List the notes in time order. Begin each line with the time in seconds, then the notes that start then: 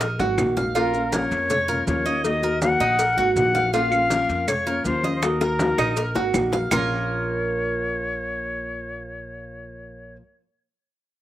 Already playing: A#1
0.01 A#4, muted nylon-string guitar stroke, cowbell, high bongo, high conga, maracas
0.19 G#1 A#3 D#4 F#4, high bongo, high conga, maracas
0.38 A#1 D#3 A#3 D#4 F#4, cowbell, low bongo, low conga, claves, maracas
0.57 A#3 D#4 F#4 F5, low bongo, low conga, maracas
0.75 F3 A#3 C#4 F4 A#4, cowbell, maracas
0.94 A#3 C#4 F4, high conga, maracas
1.12 F3 A#3 C#4 F4 A#4 C#5, cowbell, high conga, maracas
1.31 F2, cowbell, high conga, maracas
1.50 C#5, muted nylon-string guitar stroke, cowbell, high conga, low conga, maracas
1.68 A#3 C#4 F4 A#4, high conga, low conga, maracas
1.87 D#2 F3 A#3 C#4 F4 C#5, cowbell, high conga, maracas
2.06 A#3 C#4 F4 D#5, maracas
2.24 D#3 A#3 D#4 F#4 D#5, cowbell, high conga, maracas
2.42 A#3 D#4 F#4 A#4, high conga, maracas
2.61 D#3 A#3 D#4 F#4 F#5, cowbell, high conga, maracas
2.80 A#1 D#4, cowbell, high conga, maracas
2.99 A#4, muted nylon-string guitar stroke, cowbell, high conga, maracas
3.17 G#1 A#3 D#4 F#4, high conga, maracas
3.36 A#1 D#3 A#3 D#4 F#4 F#5, cowbell, high conga, maracas
3.54 A#3 D#4 F#4 F5, high conga, maracas
3.73 F3 A#3 C#4 F4 F5, cowbell, high conga, maracas
3.91 A#3 C#4 F4, high conga, claves, maracas
4.10 F3 A#3 C#4 F4 A#4, cowbell, high conga, maracas
4.29 F2, cowbell, high conga, maracas
4.48 C#5, muted nylon-string guitar stroke, cowbell, high conga, low conga, claves, maracas
4.66 A#3 C#4 F4 A#4, high conga, maracas
4.84 D#2 F3 A#3 C#4 F4 C5, cowbell, high conga, maracas
5.03 A#3 C#4 F4 D#5, high conga, maracas
5.16 C5
5.22 D#3 A#3 D#4 F#4 A#4, cowbell, high bongo, high conga, claves, maracas
5.40 A#3 D#4 F#4 A#4, high bongo, high conga, maracas
5.59 D#3 A#3 D#4 F#4, cowbell, high conga, maracas
5.78 A#1 D#4, cowbell, high bongo, high conga, claves, maracas
5.96 A#4, muted nylon-string guitar stroke, cowbell, high conga, maracas
6.15 G#1 A#3 D#4 F#4, low bongo, high conga, maracas
6.33 A#1 D#3 A#3 D#4 F#4, cowbell, low bongo, high conga, claves, maracas
6.52 A#3 D#4 F#4 F5, low bongo, high conga, maracas
6.71 A#1 A#2 F3 A#3 C#4 F4 A#4 C#5, low bongo, low conga, claves, maracas